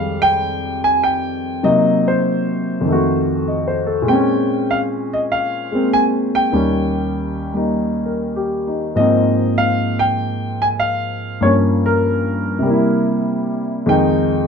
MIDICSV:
0, 0, Header, 1, 2, 480
1, 0, Start_track
1, 0, Key_signature, -4, "minor"
1, 0, Tempo, 612245
1, 1279, Time_signature, 4, 2, 24, 8
1, 11344, End_track
2, 0, Start_track
2, 0, Title_t, "Grand piano"
2, 0, Program_c, 0, 0
2, 0, Note_on_c, 0, 41, 44
2, 0, Note_on_c, 0, 51, 43
2, 0, Note_on_c, 0, 55, 51
2, 0, Note_on_c, 0, 56, 43
2, 0, Note_on_c, 0, 77, 78
2, 170, Note_on_c, 0, 79, 94
2, 180, Note_off_c, 0, 77, 0
2, 619, Note_off_c, 0, 79, 0
2, 659, Note_on_c, 0, 80, 87
2, 793, Note_off_c, 0, 80, 0
2, 811, Note_on_c, 0, 79, 78
2, 1262, Note_off_c, 0, 41, 0
2, 1277, Note_off_c, 0, 51, 0
2, 1280, Note_on_c, 0, 48, 49
2, 1283, Note_on_c, 0, 54, 48
2, 1286, Note_on_c, 0, 58, 45
2, 1287, Note_on_c, 0, 63, 57
2, 1287, Note_on_c, 0, 75, 75
2, 1290, Note_off_c, 0, 56, 0
2, 1299, Note_off_c, 0, 79, 0
2, 1306, Note_off_c, 0, 55, 0
2, 1624, Note_off_c, 0, 75, 0
2, 1629, Note_on_c, 0, 72, 67
2, 2203, Note_on_c, 0, 41, 52
2, 2236, Note_on_c, 0, 51, 48
2, 2239, Note_off_c, 0, 48, 0
2, 2241, Note_off_c, 0, 54, 0
2, 2242, Note_off_c, 0, 58, 0
2, 2243, Note_off_c, 0, 63, 0
2, 2264, Note_on_c, 0, 57, 49
2, 2292, Note_on_c, 0, 66, 57
2, 2548, Note_off_c, 0, 72, 0
2, 2726, Note_on_c, 0, 75, 45
2, 2882, Note_on_c, 0, 72, 49
2, 3030, Note_off_c, 0, 75, 0
2, 3030, Note_on_c, 0, 69, 47
2, 3131, Note_off_c, 0, 72, 0
2, 3153, Note_on_c, 0, 46, 52
2, 3178, Note_on_c, 0, 56, 49
2, 3180, Note_off_c, 0, 41, 0
2, 3197, Note_off_c, 0, 51, 0
2, 3202, Note_on_c, 0, 79, 77
2, 3209, Note_on_c, 0, 60, 49
2, 3211, Note_off_c, 0, 57, 0
2, 3224, Note_off_c, 0, 66, 0
2, 3237, Note_on_c, 0, 61, 62
2, 3285, Note_off_c, 0, 69, 0
2, 3689, Note_on_c, 0, 77, 80
2, 3694, Note_off_c, 0, 79, 0
2, 3762, Note_off_c, 0, 77, 0
2, 4025, Note_on_c, 0, 75, 71
2, 4064, Note_off_c, 0, 75, 0
2, 4168, Note_on_c, 0, 77, 79
2, 4470, Note_off_c, 0, 56, 0
2, 4482, Note_on_c, 0, 56, 40
2, 4495, Note_off_c, 0, 60, 0
2, 4498, Note_on_c, 0, 58, 38
2, 4507, Note_on_c, 0, 60, 45
2, 4611, Note_off_c, 0, 77, 0
2, 4652, Note_on_c, 0, 80, 87
2, 4725, Note_off_c, 0, 80, 0
2, 4979, Note_on_c, 0, 79, 82
2, 5093, Note_off_c, 0, 46, 0
2, 5112, Note_off_c, 0, 61, 0
2, 5113, Note_off_c, 0, 56, 0
2, 5113, Note_on_c, 0, 39, 50
2, 5113, Note_on_c, 0, 51, 43
2, 5120, Note_on_c, 0, 55, 45
2, 5121, Note_off_c, 0, 58, 0
2, 5123, Note_on_c, 0, 61, 48
2, 5125, Note_off_c, 0, 60, 0
2, 5898, Note_off_c, 0, 55, 0
2, 5901, Note_off_c, 0, 79, 0
2, 5910, Note_on_c, 0, 55, 39
2, 5927, Note_on_c, 0, 58, 36
2, 5933, Note_on_c, 0, 63, 44
2, 6314, Note_on_c, 0, 70, 42
2, 6554, Note_on_c, 0, 67, 44
2, 6649, Note_off_c, 0, 70, 0
2, 6787, Note_off_c, 0, 63, 0
2, 6799, Note_on_c, 0, 63, 46
2, 6931, Note_off_c, 0, 67, 0
2, 7020, Note_on_c, 0, 44, 50
2, 7026, Note_on_c, 0, 53, 47
2, 7030, Note_on_c, 0, 75, 75
2, 7031, Note_off_c, 0, 55, 0
2, 7033, Note_off_c, 0, 39, 0
2, 7033, Note_off_c, 0, 51, 0
2, 7033, Note_off_c, 0, 58, 0
2, 7038, Note_off_c, 0, 61, 0
2, 7045, Note_on_c, 0, 58, 47
2, 7055, Note_on_c, 0, 60, 54
2, 7131, Note_off_c, 0, 63, 0
2, 7480, Note_off_c, 0, 75, 0
2, 7509, Note_on_c, 0, 77, 83
2, 7835, Note_on_c, 0, 79, 84
2, 7852, Note_off_c, 0, 77, 0
2, 8324, Note_on_c, 0, 80, 80
2, 8334, Note_off_c, 0, 79, 0
2, 8363, Note_off_c, 0, 80, 0
2, 8464, Note_on_c, 0, 77, 82
2, 8943, Note_on_c, 0, 43, 49
2, 8947, Note_off_c, 0, 44, 0
2, 8947, Note_off_c, 0, 53, 0
2, 8955, Note_off_c, 0, 58, 0
2, 8958, Note_on_c, 0, 53, 43
2, 8958, Note_on_c, 0, 73, 77
2, 8963, Note_off_c, 0, 77, 0
2, 8964, Note_off_c, 0, 60, 0
2, 8967, Note_on_c, 0, 58, 47
2, 8985, Note_on_c, 0, 61, 55
2, 9032, Note_off_c, 0, 73, 0
2, 9296, Note_on_c, 0, 70, 74
2, 9869, Note_on_c, 0, 48, 51
2, 9897, Note_on_c, 0, 55, 49
2, 9909, Note_off_c, 0, 43, 0
2, 9915, Note_off_c, 0, 58, 0
2, 9916, Note_off_c, 0, 53, 0
2, 9927, Note_on_c, 0, 58, 48
2, 9930, Note_off_c, 0, 61, 0
2, 9952, Note_on_c, 0, 64, 57
2, 10220, Note_off_c, 0, 70, 0
2, 10853, Note_off_c, 0, 48, 0
2, 10866, Note_off_c, 0, 55, 0
2, 10867, Note_on_c, 0, 41, 60
2, 10874, Note_on_c, 0, 56, 56
2, 10878, Note_on_c, 0, 51, 55
2, 10882, Note_off_c, 0, 58, 0
2, 10884, Note_on_c, 0, 63, 65
2, 10889, Note_on_c, 0, 79, 75
2, 10894, Note_off_c, 0, 64, 0
2, 11344, Note_off_c, 0, 41, 0
2, 11344, Note_off_c, 0, 51, 0
2, 11344, Note_off_c, 0, 56, 0
2, 11344, Note_off_c, 0, 63, 0
2, 11344, Note_off_c, 0, 79, 0
2, 11344, End_track
0, 0, End_of_file